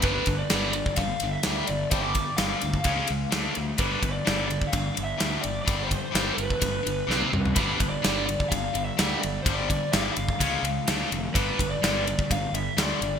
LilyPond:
<<
  \new Staff \with { instrumentName = "Lead electric guitar" } { \time 4/4 \key g \mixolydian \tempo 4 = 127 b'8. d''8. d''8 f''8. e''8. d''8 | c''16 d''8. f''2~ f''8 r8 | b'8. d''8. d''8 f''8. e''8. d''8 | d''8 c''4 b'2 r8 |
b'8. d''8. d''8 f''8. e''8. d''8 | c''16 d''8. f''2~ f''8 r8 | b'8. d''8. d''8 f''8 e''8 d''4 | }
  \new Staff \with { instrumentName = "Distorted electric guitar" } { \clef bass \time 4/4 \key g \mixolydian <g, d g>8 <g, d>8 <g, d g>8 <g, d>8 <g, d>8 <g, d>8 <g, d g>8 <g, d>8 | <g, d g>8 <g, d>8 <g, d g>8 <g, d>8 <cis gis cis'>8 <cis gis>8 <d a d'>8 <d a>8 | <g, d g>8 <g, d>8 <g, d g>8 <g, d>8 <g, d>8 <g, d>8 <g, d g>8 <g, d>8 | <g, d g>8 <g, d>8 <g, d g>8 <g, d>8 <g, d>8 <g, d>8 <c g c'>8 <c g>8 |
<g, d g>8 <g, d>8 <g, d g>8 <g, d>8 <g, d>8 <g, d>8 <g, d g>8 <g, d>8 | <g, d g>8 <g, d>8 <g, d g>8 <g, d>8 <cis gis cis'>8 <cis gis>8 <d a d'>8 <d a>8 | <g, d g>8 <g, d>8 <g, d g>8 <g, d>8 <g, d>8 <g, d>8 <g, d g>8 <g, d>8 | }
  \new Staff \with { instrumentName = "Overdriven electric guitar" } { \clef bass \time 4/4 \key g \mixolydian <g, d g>8 <g, d>8 <g, d g>8 <g, d>8 <g, d>8 <g, d>8 <g, d g>8 <g, d>8 | <g, d g>8 <g, d>8 <g, d g>8 <g, d>8 <cis gis cis'>8 <cis gis>8 <d a d'>8 <d a>8 | <g, d g>8 <g, d>8 <g, d g>8 <g, d>8 <g, d>8 <g, d>8 <g, d g>8 <g, d>8 | <g, d g>8 <g, d>8 <g, d g>8 <g, d>8 <g, d>8 <g, d>8 <c g c'>8 <c g>8 |
<g, d g>8 <g, d>8 <g, d g>8 <g, d>8 <g, d>8 <g, d>8 <g, d g>8 <g, d>8 | <g, d g>8 <g, d>8 <g, d g>8 <g, d>8 <cis gis cis'>8 <cis gis>8 <d a d'>8 <d a>8 | <g, d g>8 <g, d>8 <g, d g>8 <g, d>8 <g, d>8 <g, d>8 <g, d g>8 <g, d>8 | }
  \new Staff \with { instrumentName = "Fingered electric bass" } { \clef bass \time 4/4 \key g \mixolydian g,,8 g,,8 g,,4 g,,8 g,,8 d,8 g,,8 | g,,4 g,,8 d,8 cis,8 cis,8 d,8 d,8 | g,,8 g,,8 g,,4 g,,8 g,,8 d,8 g,,8 | g,,4 g,,8 g,,8 g,,8 g,,8 c,8 c,8 |
g,,8 g,,8 g,,4 g,,8 g,,8 d,8 g,,8 | g,,4 g,,8 g,,8 cis,8 cis,8 d,8 f,,8 | g,,8 g,,8 g,,4 g,,8 g,,8 d,8 g,,8 | }
  \new DrumStaff \with { instrumentName = "Drums" } \drummode { \time 4/4 <bd cymr>8 <bd cymr>8 <cymr sn>8 cymr16 bd16 <bd cymr>8 cymr8 <cymr sn>8 cymr8 | <bd cymr>8 <bd cymr>8 <cymr sn>8 cymr16 bd16 <bd cymr>8 cymr8 <cymr sn>8 cymr8 | <bd cymr>8 <bd cymr>8 <cymr sn>8 cymr16 bd16 <bd cymr>8 cymr8 <cymr sn>8 cymr8 | <bd cymr>8 <bd cymr>8 <cymr sn>8 cymr16 bd16 <bd cymr>8 cymr8 sn16 tommh16 toml16 tomfh16 |
<bd cymr>8 <bd cymr>8 <cymr sn>8 cymr16 bd16 <bd cymr>8 cymr8 <cymr sn>8 cymr8 | <bd cymr>8 <bd cymr>8 <cymr sn>8 cymr16 bd16 <bd cymr>8 cymr8 <cymr sn>8 cymr8 | <bd cymr>8 <bd cymr>8 <cymr sn>8 cymr16 bd16 <bd cymr>8 cymr8 <cymr sn>8 cymr8 | }
>>